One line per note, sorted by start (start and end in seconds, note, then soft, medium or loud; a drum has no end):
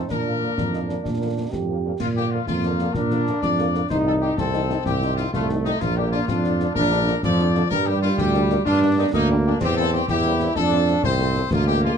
0.00 0.11 A3 medium
0.00 0.11 C4 medium
0.00 0.11 D#4 medium
0.09 0.50 A#2 medium
0.09 1.85 A#3 medium
0.09 0.54 D4 medium
0.09 1.85 D4 medium
0.09 1.49 A#4 loud
0.09 concert bass drum medium
0.09 snare medium
0.09 crash soft
0.27 0.32 D3 medium
0.27 0.33 F3 medium
0.27 0.33 A#3 medium
0.43 0.48 D3 medium
0.43 0.49 F3 medium
0.43 0.48 A#3 medium
0.57 0.97 F2 medium
0.57 0.64 D4 medium
0.57 concert bass drum medium
0.57 snare medium
0.73 0.80 D3 medium
0.73 0.81 F3 medium
0.73 0.80 A#3 medium
0.73 0.80 D#4 medium
0.73 snare medium
0.87 0.96 D3 medium
0.87 0.95 F3 medium
0.87 0.95 A#3 medium
0.87 0.95 D4 medium
0.87 snare medium
1.04 1.45 A#2 medium
1.04 1.53 D4 medium
1.04 concert bass drum medium
1.04 snare medium
1.22 1.28 D3 medium
1.22 1.28 F3 medium
1.22 1.28 A#3 medium
1.38 1.44 D3 medium
1.38 1.43 F3 medium
1.38 1.43 A#3 medium
1.51 1.92 F2 medium
1.51 1.99 G4 medium
1.51 concert bass drum medium
1.51 snare medium
1.70 1.75 D3 medium
1.70 1.75 F3 medium
1.70 1.75 A#3 medium
1.86 1.91 D3 medium
1.86 1.91 F3 medium
1.86 1.91 A#3 medium
2.00 2.40 A#2 medium
2.00 2.07 F4 loud
2.00 concert bass drum medium
2.00 snare medium
2.00 crash medium
2.16 2.23 D3 medium
2.16 2.23 F3 medium
2.16 2.22 A#3 medium
2.16 2.31 G4 loud
2.32 2.39 D3 medium
2.32 2.38 F3 medium
2.32 2.39 A#3 medium
2.32 2.47 F4 loud
2.47 2.87 F2 medium
2.47 2.92 A#3 medium
2.47 2.92 F4 loud
2.47 concert bass drum medium
2.47 snare medium
2.63 2.71 D3 medium
2.63 2.71 F3 medium
2.63 2.71 A#3 medium
2.63 snare medium
2.79 2.87 D3 medium
2.79 2.86 F3 medium
2.79 2.87 A#3 medium
2.79 snare medium
2.94 3.30 A#2 medium
2.94 3.87 D4 loud
2.94 3.42 A#4 loud
2.94 concert bass drum medium
2.94 snare medium
3.11 3.17 D3 medium
3.11 3.17 F3 medium
3.11 3.18 A#3 medium
3.11 snare medium
3.27 3.34 D3 medium
3.27 3.34 F3 medium
3.27 3.34 A#3 medium
3.27 snare medium
3.41 3.82 F2 medium
3.41 3.86 D5 loud
3.41 concert bass drum medium
3.41 snare medium
3.59 3.65 D3 medium
3.59 3.65 F3 medium
3.59 3.65 A#3 medium
3.59 snare medium
3.74 3.80 D3 medium
3.74 3.80 F3 medium
3.74 3.80 A#3 medium
3.74 snare medium
3.90 4.30 C2 loud
3.90 4.34 D#4 loud
3.90 3.97 C5 loud
3.90 concert bass drum medium
3.90 snare medium
3.90 crash soft
4.05 4.11 C3 medium
4.05 4.11 F3 medium
4.05 4.11 D#4 medium
4.05 4.13 A4 loud
4.20 4.27 C3 medium
4.20 4.27 F3 medium
4.20 4.26 D#4 medium
4.20 4.37 G4 loud
4.37 4.77 C2 medium
4.37 5.29 C4 loud
4.37 4.82 A4 loud
4.37 concert bass drum medium
4.37 snare medium
4.52 4.59 C3 medium
4.52 4.59 F3 medium
4.52 4.58 D#4 medium
4.52 snare medium
4.69 4.75 C3 medium
4.69 4.75 F3 medium
4.69 4.75 D#4 medium
4.69 snare medium
4.85 5.25 C2 loud
4.85 5.15 G4 loud
4.85 concert bass drum medium
4.85 snare medium
5.02 5.08 C3 medium
5.02 5.07 F3 medium
5.02 5.07 D#4 medium
5.02 snare medium
5.17 5.23 C3 medium
5.17 5.24 F3 medium
5.17 5.24 D#4 medium
5.17 5.32 F4 loud
5.17 snare medium
5.32 5.73 C2 medium
5.32 5.77 A3 loud
5.32 5.48 F4 loud
5.32 concert bass drum medium
5.32 snare medium
5.50 5.55 C3 medium
5.50 5.56 F3 medium
5.50 5.56 D#4 medium
5.50 snare medium
5.65 5.71 C3 medium
5.65 5.71 F3 medium
5.65 5.80 D#4 loud
5.65 5.71 D#4 medium
5.65 snare medium
5.81 6.21 A#1 loud
5.81 6.28 A#3 loud
5.81 5.96 F4 loud
5.81 concert bass drum medium
5.81 snare medium
5.81 crash soft
5.96 6.02 D3 medium
5.96 6.03 F3 medium
5.96 6.03 D4 medium
5.96 6.12 G4 loud
6.12 6.18 D3 medium
6.12 6.18 F3 medium
6.12 6.18 D4 medium
6.12 6.26 F4 loud
6.28 6.68 F2 loud
6.28 6.75 D4 loud
6.28 6.72 F4 loud
6.28 concert bass drum medium
6.28 snare medium
6.44 6.50 D3 medium
6.44 6.50 F3 medium
6.44 6.50 D4 medium
6.44 snare medium
6.60 6.66 D3 medium
6.60 6.66 F3 medium
6.60 6.66 D4 medium
6.60 snare medium
6.75 7.15 A#1 loud
6.75 7.20 D4 loud
6.75 7.19 A#4 loud
6.75 concert bass drum medium
6.75 snare medium
6.91 6.97 D3 medium
6.91 6.97 F3 medium
6.91 6.97 D4 medium
6.91 snare medium
7.08 7.14 D3 medium
7.08 7.13 F3 medium
7.08 7.14 D4 medium
7.08 snare medium
7.23 7.63 F2 loud
7.23 7.68 F3 loud
7.23 7.67 D5 loud
7.23 concert bass drum medium
7.23 snare medium
7.39 7.45 D3 medium
7.39 7.45 F3 medium
7.39 7.45 D4 medium
7.39 snare medium
7.55 7.61 D3 medium
7.55 7.61 F3 medium
7.55 7.61 D4 medium
7.55 snare medium
7.71 8.10 G2 loud
7.71 8.66 G3 loud
7.71 7.85 A#4 loud
7.71 concert bass drum medium
7.71 snare medium
7.71 crash soft
7.87 7.92 G3 medium
7.87 7.93 A#3 medium
7.87 7.93 D4 medium
7.87 8.02 G4 loud
8.03 8.09 G3 medium
8.03 8.09 A#3 medium
8.03 8.09 D4 medium
8.03 8.17 F4 loud
8.18 8.58 D2 loud
8.18 8.63 G4 loud
8.18 concert bass drum medium
8.18 snare medium
8.33 8.40 G3 medium
8.33 8.39 A#3 medium
8.33 8.39 D4 medium
8.33 snare medium
8.50 8.55 G3 medium
8.50 8.56 A#3 medium
8.50 8.56 D4 medium
8.50 snare medium
8.65 9.05 G2 loud
8.65 9.10 D4 loud
8.65 8.80 F4 loud
8.65 concert bass drum medium
8.65 snare medium
8.81 8.87 G3 medium
8.81 8.87 A#3 medium
8.81 8.88 D4 medium
8.98 9.03 G3 medium
8.98 9.04 A#3 medium
8.98 9.03 D4 medium
8.98 9.05 D#4 loud
9.13 9.53 D2 loud
9.13 9.58 A#3 loud
9.13 9.28 D#4 loud
9.13 concert bass drum medium
9.13 snare medium
9.30 9.36 G3 medium
9.30 9.35 A#3 medium
9.30 9.36 D4 medium
9.45 9.51 G3 medium
9.45 9.51 A#3 medium
9.45 9.60 D4 loud
9.45 9.51 D4 medium
9.60 10.00 E2 loud
9.60 10.05 C4 loud
9.60 9.76 G4 loud
9.60 concert bass drum medium
9.60 snare medium
9.60 crash medium
9.77 9.84 G3 medium
9.77 9.84 A#3 medium
9.77 9.84 C4 medium
9.77 9.92 A4 loud
9.93 10.00 G3 medium
9.93 10.00 A#3 medium
9.93 10.00 C4 medium
9.93 10.08 G4 loud
10.08 10.48 E2 loud
10.08 10.57 E4 loud
10.08 10.53 G4 loud
10.08 concert bass drum medium
10.08 snare medium
10.24 10.32 G3 medium
10.24 10.31 A#3 medium
10.24 10.32 C4 medium
10.24 snare medium
10.40 10.48 G3 medium
10.40 10.48 A#3 medium
10.40 10.47 C4 medium
10.40 snare medium
10.56 10.95 F2 loud
10.56 11.04 D4 loud
10.56 11.00 A4 loud
10.56 concert bass drum medium
10.56 snare medium
10.72 10.78 F3 medium
10.72 10.78 A3 medium
10.72 10.78 C4 medium
10.72 snare medium
10.87 10.94 F3 medium
10.87 10.94 A3 medium
10.87 10.94 C4 medium
10.87 snare medium
11.03 11.43 C2 loud
11.03 11.51 C4 loud
11.03 11.48 C5 loud
11.03 concert bass drum medium
11.03 snare medium
11.19 11.26 F3 medium
11.19 11.26 A3 medium
11.19 11.26 C4 medium
11.19 snare medium
11.35 11.42 F3 medium
11.35 11.41 A3 medium
11.35 11.42 C4 medium
11.35 snare medium
11.51 11.91 D2 loud
11.51 11.98 A#3 loud
11.51 11.67 F4 loud
11.51 concert bass drum medium
11.51 snare medium
11.51 crash soft
11.67 11.73 F3 medium
11.67 11.73 G#3 medium
11.67 11.73 A#3 medium
11.67 11.82 G4 loud
11.83 11.90 F3 medium
11.83 11.90 G#3 medium
11.83 11.90 A#3 medium
11.83 11.97 F4 loud